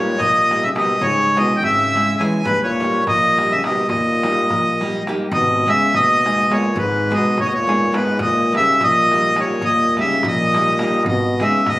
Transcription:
Already playing: french horn A#2, nylon-string guitar G3 A#3 D#4 G4, accordion C#5
0.18 upright bass A#1, french horn A#2, accordion D#5, darbuka dum
0.36 darbuka tek
0.50 nylon-string guitar G3 A#3 D#4 G4, darbuka tek
0.63 french horn C#3, accordion E5
0.75 french horn B2, nylon-string guitar G3 A#3 D#4 G4, accordion D#5, darbuka tek
0.89 darbuka tek
1.01 upright bass C#2, french horn G#2, accordion C#5, darbuka dum
1.36 french horn B2, nylon-string guitar G#3 C#4 E4 G#4, accordion D#5, darbuka tek
1.57 french horn D#3, accordion G5
1.63 upright bass G#1, french horn C#3, accordion E5, darbuka dum
1.80 darbuka tek
1.94 nylon-string guitar G#3 C#4 E4 G#4, darbuka tek
2.19 french horn E3, nylon-string guitar G#3 C#4 E4 G#4, accordion G#5, darbuka tek
2.33 darbuka tek
2.45 upright bass D#2, french horn G2, accordion B4, darbuka dum
2.62 french horn A#2, accordion C#5
2.80 nylon-string guitar G3 A#3 D#4 G4, darbuka tek
3.07 upright bass A#1, french horn A#2, accordion D#5, darbuka dum
3.23 darbuka tek
3.38 nylon-string guitar G3 A#3 D#4 G4, darbuka tek
3.51 french horn C#3, accordion E5
3.63 french horn B2, nylon-string guitar G3 A#3 D#4 G4, accordion D#5, darbuka tek
3.77 darbuka tek
3.88 upright bass D#2, french horn A#2, accordion D#5, darbuka dum
4.07 darbuka tek
4.23 nylon-string guitar G3 A#3 D#4 G4, darbuka tek
4.37 darbuka tek
4.50 upright bass A#1, darbuka dum
4.66 darbuka tek
4.81 nylon-string guitar G3 A#3 D#4 G4, darbuka tek
4.94 darbuka tek
5.07 nylon-string guitar G3 A#3 D#4 G4, darbuka tek
5.20 darbuka tek
5.31 upright bass G#1, french horn B2, accordion D#5, darbuka dum
5.66 french horn C#3, nylon-string guitar G#3 B3 D#4 G#4, accordion E5, darbuka tek
5.82 darbuka tek
5.94 upright bass D#2, french horn B2, accordion D#5, darbuka dum
6.10 darbuka tek
6.24 nylon-string guitar G#3 B3 D#4 G#4, darbuka tek
6.39 darbuka tek
6.50 french horn A#2, nylon-string guitar G#3 B3 D#4 G#4, accordion C#5, darbuka tek
6.76 upright bass G#1, french horn G#2, accordion B4, darbuka dum
7.10 french horn B2, nylon-string guitar G#3 B3 D#4 G#4, accordion D#5, darbuka tek
7.26 darbuka tek
7.37 upright bass D#2, accordion C#5, darbuka dum
7.41 french horn G#2
7.46 french horn B2, accordion D#5
7.54 french horn A#2, accordion C#5, darbuka tek
7.67 nylon-string guitar G#3 B3 D#4 G#4, darbuka tek
7.82 darbuka tek
7.92 nylon-string guitar G#3 B3 D#4 G#4, accordion B4, darbuka tek
7.97 french horn G#2
8.19 upright bass D#2, french horn A#2, accordion D#5, darbuka dum
8.52 nylon-string guitar G3 A#3 D#4 G4, darbuka tek
8.56 french horn C#3, accordion E5
8.68 darbuka tek
8.81 upright bass A#1, french horn A#2, accordion D#5, darbuka dum
9.11 nylon-string guitar G3 A#3 D#4 G4, darbuka tek
9.24 darbuka tek
9.36 nylon-string guitar G3 A#3 D#4 G4, darbuka tek
9.40 french horn A#2, accordion C#5
9.61 upright bass D#2, french horn A#2, accordion D#5, darbuka dum
9.97 french horn C#3, nylon-string guitar G3 A#3 D#4 G4, accordion E5, darbuka tek
10.10 darbuka tek
10.23 upright bass A#1, darbuka dum
10.27 french horn A#2, accordion D#5
10.39 darbuka tek
10.55 nylon-string guitar G3 A#3 D#4 G4, darbuka tek
10.67 darbuka tek
10.79 nylon-string guitar G3 A#3 D#4 G4, darbuka tek
10.92 darbuka tek
11.04 upright bass G#1, french horn B2, accordion D#5, darbuka dum
11.40 french horn C#3, nylon-string guitar G#3 B3 D#4 G#4, accordion E5, darbuka tek
11.53 darbuka tek
11.66 upright bass D#2, french horn B2, accordion D#5, darbuka dum

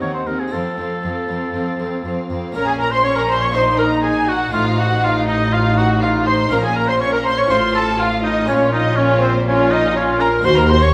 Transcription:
Already playing: harpsichord C4 D#4
0.01 cello section D#2, harpsichord D#2, viola section C4, violin section D#4 F#5, oboe C#5
0.14 oboe C5
0.27 cello section D#2, harpsichord D#2, viola section C4, violin section D#4 F#5, oboe A#4
0.40 oboe G#4
0.48 harpsichord C4, viola section C4
0.52 harpsichord F2, cello section F2, violin section C4 F5, oboe A4
0.78 cello section F2, harpsichord F2, viola section C4, violin section C4 F5
1.03 cello section F2, harpsichord F2, viola section C4, violin section C4 F5
1.28 cello section F2, harpsichord F2, viola section C4, violin section C4 F5
1.53 cello section F2, harpsichord F2, viola section C4, violin section C4 F5
1.78 cello section F2, harpsichord F2, viola section C4, violin section C4 F5
2.04 cello section F2, harpsichord F2, viola section C4, violin section C4 F5
2.30 cello section F2, harpsichord F2, violin section C4 F5, viola section C4
2.52 double bass section A#1, cello section A#2, harpsichord A#2 A#3 C#4, viola section C#4, oboe A#4, violin section A#4 A#5
2.67 oboe G#4, violin section G#4 G#5
2.79 oboe A#4, violin section A#4 A#5
2.91 oboe C5, violin section C5 C6
3.04 viola section C#4, oboe C#5, violin section C#5 C#6
3.16 oboe A#4, violin section A#4 A#5
3.30 oboe C5, violin section C5 C6
3.42 oboe C#5, violin section C#5 C#6
3.52 harpsichord A#3 D#4, viola section D#4, violin section C5 C6, oboe C5
3.78 violin section A#4 A#5, oboe A#4
4.03 oboe G#4, violin section G#4 G#5
4.28 violin section F#4 F#5, oboe F#4
4.50 double bass section A1, cello section A2, harpsichord A2 C4 D#4, viola section D#4, violin section F4 F5, oboe F4
4.78 violin section F#4 F#5, oboe F#4
5.03 viola section D#4, violin section F4 F5, oboe F4
5.27 violin section D#4 D#5, oboe D#4
5.52 viola section D#4, violin section F4 F5, oboe F4
5.77 violin section F#4 F#5, oboe F#4
6.01 viola section D#4, violin section F4 F5, oboe F4
6.27 oboe C5, violin section C5 C6
6.49 double bass section A#1, cello section A#2, harpsichord A#2 C#4 F4, viola section C#4, violin section A#4 A#5, oboe A#4
6.64 violin section G#4 G#5, oboe G#4
6.76 oboe A#4, violin section A#4 A#5
6.89 violin section C5 C6, oboe C5
7.00 viola section C#4, violin section C#5 C#6, oboe C#5
7.13 oboe A#4, violin section A#4 A#5
7.25 oboe C5, violin section C5 C6
7.37 oboe C#5, violin section C#5 C#6
7.48 double bass section A1, cello section A2, harpsichord A2 C4 F4, viola section F4, oboe C5, violin section C5 C6
7.74 violin section A4 A5, oboe A4
7.99 viola section F4, violin section F4 F5, oboe F4
8.23 oboe D#4, violin section D#4 D#5
8.45 double bass section A#1, cello section A#2, harpsichord A#2 A#3 F4, oboe C#4, violin section C#4 C#5, viola section F4
8.72 oboe D#4, violin section D#4 D#5
8.97 oboe C#4, violin section C#4 C#5, viola section F4
9.22 violin section C4 C5, oboe C4
9.46 violin section C#4 C#5, oboe C#4, viola section F4
9.71 oboe D#4, violin section D#4 D#5
9.95 oboe C#4, violin section C#4 C#5, viola section F4
10.20 oboe A#4, violin section A#4 A#5
10.40 harpsichord G#3 C4 F#4
10.45 double bass section D#2, harpsichord D#2, cello section D#2, viola section F#4, oboe C5, violin section C5 C6
10.57 oboe A#4, violin section A#4 A#5
10.69 viola section F#4, oboe C5, violin section C5 C6
10.82 oboe C#5, violin section C#5 C#6

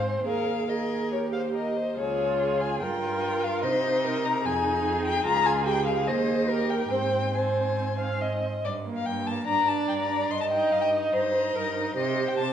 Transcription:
Already playing: cello G#2, viola C4, violin C5
0.26 cello D#2, viola G#4, violin A#4 F5
0.69 viola G#4, violin A#4 D#5
1.12 viola G4, violin C#5
1.33 violin C5 F5
1.55 violin A#4 D#5
1.76 violin C5
1.97 cello C#2, viola F4, violin G#4 C#5
2.40 violin G#4
2.61 violin G#5
2.82 cello G2, viola F4, violin A#4 G5
3.44 violin F5
3.63 cello C3, viola D#4, violin C5 D#5
4.05 violin A#4
4.25 violin A#5
4.44 cello F2, viola D#4, violin G#4 G#5
5.06 violin G5
5.26 cello C#2, viola F4, violin A#5
5.46 violin G#5
5.65 viola G4, violin G5
5.86 violin F5
6.07 cello D#2, viola G#4, violin C5 D#5
6.49 viola G4, violin A#4
6.70 violin G5
6.91 cello G#2, viola C4, violin C5 G5
7.34 viola C4, violin C5 G#5
8.00 violin F5
8.21 violin D#5
8.64 cello G2, violin D5
8.85 viola A#3
8.96 violin F5
9.06 cello G2, violin G5
9.27 viola A#3, violin A5
9.47 cello G2, viola D4, violin D5 A#5
9.68 viola D4, violin A5
9.89 cello G2, violin G5
9.99 violin A#5
10.10 viola D4
10.31 cello G2, violin D#5 C6
10.41 violin A5
10.51 viola D#4, violin G5
10.72 cello G2, violin F5
10.81 violin G5
10.93 viola D#4
11.13 cello G2, violin C5 D#5
11.34 viola D#4
11.55 cello G2, violin A#4
11.76 viola D#4
11.96 cello C3, viola G4, violin C5 D#5
12.17 viola G4
12.28 violin G5
12.39 cello C3, violin A5

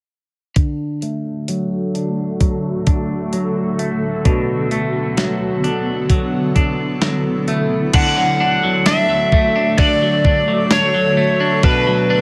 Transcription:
0.56 ambient pad D3 A3 F#4 A4, clean electric guitar D3 D4, kick, closed hi-hat
1.02 clean electric guitar A3, closed hi-hat
1.48 clean electric guitar F#3, closed hi-hat
1.94 clean electric guitar D4, closed hi-hat
2.41 clean electric guitar F#3, kick, closed hi-hat
2.87 clean electric guitar D4, kick, closed hi-hat
3.33 clean electric guitar F#3, closed hi-hat
3.79 clean electric guitar A3, closed hi-hat
4.25 clean electric guitar B2 D4, ambient pad B3, kick, closed hi-hat
4.71 clean electric guitar A3, closed hi-hat
5.17 clean electric guitar F#3, snare, closed hi-hat
5.64 clean electric guitar D4, closed hi-hat
6.10 clean electric guitar F#3, ambient pad E4, kick, closed hi-hat
6.56 clean electric guitar D4, kick, closed hi-hat
7.02 clean electric guitar F#3, snare, closed hi-hat
7.48 clean electric guitar A3, closed hi-hat
7.93 clean electric guitar D3 D4, ambient pad D3 A3 F#4 A4, electric slide guitar F#5, kick, crash, ride
8.17 clean electric guitar F#3
8.40 clean electric guitar D4
8.63 clean electric guitar F#3
8.86 clean electric guitar D4, electric slide guitar E5, snare, ride, tambourine
9.10 clean electric guitar F#3
9.32 clean electric guitar A3, kick
9.56 clean electric guitar D4
9.78 clean electric guitar D3 D4, electric slide guitar D5, kick, ride
10.02 clean electric guitar F#3
10.25 clean electric guitar D4, kick
10.48 clean electric guitar F#3
10.71 clean electric guitar D4, electric slide guitar C#5, snare, ride, tambourine
10.94 clean electric guitar F#3
11.17 clean electric guitar A3
11.40 clean electric guitar D4
11.63 clean electric guitar B2 D4, ambient pad B3, electric slide guitar B4, kick, ride
11.87 clean electric guitar F#3
12.10 clean electric guitar D4

